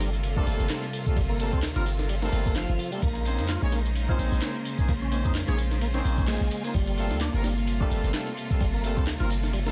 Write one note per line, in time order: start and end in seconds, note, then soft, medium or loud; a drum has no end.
0.00 0.44 G1 medium
0.00 2.99 C3 medium
0.00 2.99 G3 medium
0.00 0.10 G3 medium
0.00 2.99 A#3 medium
0.00 2.99 F4 medium
0.00 2.99 A4 medium
0.00 snare medium
0.00 ride medium
0.00 tambourine medium
0.13 tambourine soft
0.23 ride medium
0.23 tambourine soft
0.36 0.67 G3 loud
0.36 0.68 A3 loud
0.36 0.68 A#3 loud
0.36 0.68 C4 medium
0.36 0.46 D4 medium
0.36 0.68 F4 medium
0.36 0.68 A4 loud
0.36 kick medium
0.47 0.57 G1 medium
0.47 ride medium
0.47 tambourine medium
0.60 0.68 G1 loud
0.60 tambourine soft
0.70 0.85 G3 medium
0.70 0.85 A3 medium
0.70 0.85 A#3 medium
0.70 0.85 C4 medium
0.70 0.85 F4 medium
0.70 0.85 A4 medium
0.70 snare loud
0.70 clap loud
0.70 ride medium
0.70 tambourine soft
0.83 ride soft
0.93 ride medium
0.93 tambourine medium
1.06 1.19 G3 medium
1.06 1.19 A3 medium
1.06 1.19 A#3 medium
1.06 1.19 C4 medium
1.06 1.19 F4 medium
1.06 1.19 A4 medium
1.06 kick medium
1.06 tambourine soft
1.16 1.54 G1 loud
1.16 1.22 G3 medium
1.16 kick loud
1.16 ride medium
1.16 tambourine soft
1.29 1.51 A#3 medium
1.40 1.62 G3 medium
1.40 1.62 A3 medium
1.40 1.62 A#3 medium
1.40 1.62 C4 medium
1.40 1.62 F4 medium
1.40 1.62 A4 loud
1.40 ride medium
1.40 tambourine medium
1.53 1.71 D2 medium
1.53 1.60 C4 loud
1.53 kick medium
1.53 tambourine soft
1.63 snare loud
1.63 clap loud
1.63 ride medium
1.63 tambourine soft
1.76 2.30 G1 medium
1.76 1.89 G3 medium
1.76 1.89 A#3 medium
1.76 1.89 C4 medium
1.76 1.86 F4 medium
1.76 1.89 F4 medium
1.76 1.89 A#4 loud
1.76 snare soft
1.86 open hi-hat medium
1.86 tambourine medium
1.99 snare soft
1.99 tambourine soft
2.09 2.15 G3 medium
2.09 ride medium
2.09 tambourine soft
2.22 2.54 G3 loud
2.22 2.53 A3 loud
2.22 2.55 A#3 medium
2.22 2.53 A#3 loud
2.22 2.53 C4 loud
2.22 2.53 F4 loud
2.22 2.53 A4 loud
2.22 snare soft
2.32 2.65 G1 medium
2.32 ride medium
2.32 tambourine medium
2.46 kick loud
2.46 tambourine soft
2.56 2.91 F3 loud
2.56 2.71 G3 medium
2.56 2.71 A3 medium
2.56 2.71 A#3 medium
2.56 2.71 C4 medium
2.56 2.71 F4 medium
2.56 2.71 A4 medium
2.56 snare loud
2.56 clap loud
2.56 ride medium
2.56 tambourine soft
2.69 2.77 G1 loud
2.79 ride medium
2.79 tambourine medium
2.92 3.02 G3 medium
2.92 3.01 G3 medium
2.92 3.01 A3 medium
2.92 3.01 A#3 medium
2.92 3.01 C4 medium
2.92 3.01 F4 medium
2.92 3.01 A4 medium
2.92 ride soft
2.92 tambourine soft
3.02 3.40 A#1 loud
3.02 6.71 C#3 medium
3.02 6.71 G#3 medium
3.02 3.48 A#3 medium
3.02 9.72 A#3 medium
3.02 4.87 D#4 loud
3.02 6.71 C5 medium
3.02 kick loud
3.02 ride medium
3.02 tambourine soft
3.15 ride soft
3.25 3.48 A#3 medium
3.25 3.48 C4 medium
3.25 3.48 C#4 medium
3.25 3.48 D#4 medium
3.25 3.48 G#4 medium
3.25 3.48 C5 loud
3.25 ride medium
3.25 tambourine medium
3.39 3.57 F2 medium
3.39 snare medium
3.39 tambourine soft
3.49 3.61 F4 loud
3.49 snare loud
3.49 clap loud
3.49 ride medium
3.49 tambourine soft
3.62 4.16 A#1 medium
3.62 3.75 A#3 medium
3.62 3.70 C#4 medium
3.62 3.75 C#4 medium
3.62 3.75 D#4 medium
3.62 3.75 G#4 medium
3.62 3.75 C#5 loud
3.72 3.82 A#3 medium
3.72 snare medium
3.72 ride medium
3.72 tambourine medium
3.85 tambourine soft
3.96 ride medium
3.96 tambourine soft
4.08 4.40 A#3 loud
4.08 4.40 C4 loud
4.08 4.40 C#4 medium
4.08 4.40 D#4 loud
4.08 4.19 F4 medium
4.08 4.40 G#4 medium
4.08 4.40 C5 loud
4.08 kick medium
4.19 4.29 A#1 medium
4.19 ride medium
4.19 tambourine medium
4.32 4.40 A#1 loud
4.32 tambourine soft
4.42 4.57 A#3 medium
4.42 4.57 C4 medium
4.42 4.57 C#4 medium
4.42 4.57 D#4 medium
4.42 4.57 G#4 medium
4.42 4.57 C5 medium
4.42 snare loud
4.42 clap loud
4.42 ride medium
4.42 tambourine soft
4.55 ride soft
4.65 ride medium
4.65 tambourine medium
4.78 4.91 A#3 medium
4.78 4.91 C4 medium
4.78 4.91 C#4 medium
4.78 4.91 D#4 medium
4.78 4.91 G#4 medium
4.78 4.91 C5 medium
4.78 kick loud
4.78 tambourine soft
4.88 5.26 A#1 loud
4.88 4.94 A#3 medium
4.88 9.72 F4 medium
4.88 kick loud
4.88 ride medium
4.88 tambourine soft
5.02 5.24 C#4 medium
5.11 5.34 A#3 medium
5.11 5.34 C4 medium
5.11 5.34 C#4 medium
5.11 5.34 D#4 medium
5.11 5.34 G#4 medium
5.11 5.34 C5 loud
5.11 ride medium
5.11 tambourine medium
5.25 5.43 F2 medium
5.25 5.33 D#4 loud
5.25 kick loud
5.25 tambourine soft
5.35 snare loud
5.35 clap loud
5.35 ride medium
5.35 tambourine soft
5.48 6.02 A#1 medium
5.48 5.60 A#3 medium
5.48 5.60 C#4 medium
5.48 5.61 D#4 medium
5.48 5.60 G#4 medium
5.48 5.58 G#4 medium
5.48 5.61 C#5 loud
5.48 snare soft
5.58 open hi-hat medium
5.58 tambourine medium
5.71 snare soft
5.71 tambourine soft
5.81 5.87 A#3 medium
5.81 ride medium
5.81 tambourine soft
5.94 6.25 A#3 loud
5.94 6.25 C4 loud
5.94 6.26 C#4 loud
5.94 6.27 C#4 medium
5.94 6.26 D#4 medium
5.94 6.25 G#4 medium
5.94 6.25 C5 loud
5.94 snare soft
6.05 6.37 A#1 medium
6.05 ride medium
6.05 tambourine medium
6.18 kick loud
6.18 tambourine soft
6.28 6.63 G#3 loud
6.28 6.43 A#3 medium
6.28 6.43 C4 medium
6.28 6.43 C#4 medium
6.28 6.43 D#4 medium
6.28 6.43 G#4 medium
6.28 6.43 C5 medium
6.28 snare loud
6.28 clap loud
6.28 ride medium
6.28 tambourine soft
6.41 6.49 A#1 loud
6.51 ride medium
6.51 tambourine medium
6.64 6.73 A#3 medium
6.64 6.74 A#3 medium
6.64 6.73 C4 medium
6.64 6.73 C#4 medium
6.64 6.73 D#4 medium
6.64 6.73 G#4 medium
6.64 6.73 C5 medium
6.64 ride soft
6.64 tambourine soft
6.74 7.12 G1 loud
6.74 9.72 C3 medium
6.74 9.72 G3 medium
6.74 7.20 G3 medium
6.74 9.72 A4 medium
6.74 kick loud
6.74 ride medium
6.74 tambourine soft
6.87 ride soft
6.98 7.20 G3 medium
6.98 7.20 A3 medium
6.98 7.20 A#3 medium
6.98 7.20 C4 medium
6.98 7.20 F4 medium
6.98 7.20 A4 loud
6.98 ride medium
6.98 tambourine medium
7.11 7.29 D2 medium
7.11 snare medium
7.11 tambourine soft
7.21 7.34 D4 loud
7.21 snare loud
7.21 clap loud
7.21 ride medium
7.21 tambourine soft
7.34 7.88 G1 medium
7.34 7.47 G3 medium
7.34 7.47 A#3 medium
7.34 7.42 A#3 medium
7.34 7.47 C4 medium
7.34 7.47 F4 medium
7.34 7.47 A#4 loud
7.44 7.54 G3 medium
7.44 snare medium
7.44 ride medium
7.44 tambourine medium
7.58 tambourine soft
7.67 ride medium
7.67 tambourine soft
7.80 8.11 G3 loud
7.80 8.11 A3 loud
7.80 8.12 A#3 medium
7.80 8.11 C4 loud
7.80 7.90 D4 medium
7.80 8.11 F4 loud
7.80 8.11 A4 loud
7.80 kick medium
7.90 8.02 G1 medium
7.90 ride medium
7.90 tambourine medium
8.04 8.12 G1 loud
8.04 tambourine soft
8.14 8.29 G3 medium
8.14 8.29 A3 medium
8.14 8.29 A#3 medium
8.14 8.29 C4 medium
8.14 8.29 F4 medium
8.14 8.29 A4 medium
8.14 snare loud
8.14 clap loud
8.14 ride medium
8.14 tambourine soft
8.27 ride soft
8.37 ride medium
8.37 tambourine medium
8.50 8.63 G3 medium
8.50 8.63 A3 medium
8.50 8.63 A#3 medium
8.50 8.63 C4 medium
8.50 8.63 F4 medium
8.50 8.63 A4 medium
8.50 kick medium
8.50 tambourine soft
8.61 8.98 G1 loud
8.61 8.66 G3 medium
8.61 kick loud
8.61 ride medium
8.61 tambourine soft
8.74 8.96 A#3 medium
8.84 9.06 G3 medium
8.84 9.06 A3 medium
8.84 9.06 A#3 medium
8.84 9.06 C4 medium
8.84 9.06 F4 medium
8.84 9.06 A4 loud
8.84 ride medium
8.84 tambourine medium
8.97 9.15 D2 medium
8.97 9.04 C4 loud
8.97 kick loud
8.97 tambourine soft
9.07 snare loud
9.07 clap loud
9.07 ride medium
9.07 tambourine soft
9.20 9.72 G1 medium
9.20 9.33 G3 medium
9.20 9.33 A#3 medium
9.20 9.33 C4 medium
9.20 9.30 F4 medium
9.20 9.33 F4 medium
9.20 9.33 A#4 loud
9.20 snare soft
9.30 open hi-hat medium
9.30 tambourine medium
9.43 snare soft
9.43 tambourine soft
9.53 9.59 G3 medium
9.53 ride loud
9.53 tambourine soft
9.66 9.72 G3 loud
9.66 9.72 A3 loud
9.66 9.72 A#3 medium
9.66 9.72 C4 medium
9.66 9.72 F4 loud
9.66 9.72 A4 loud
9.66 snare soft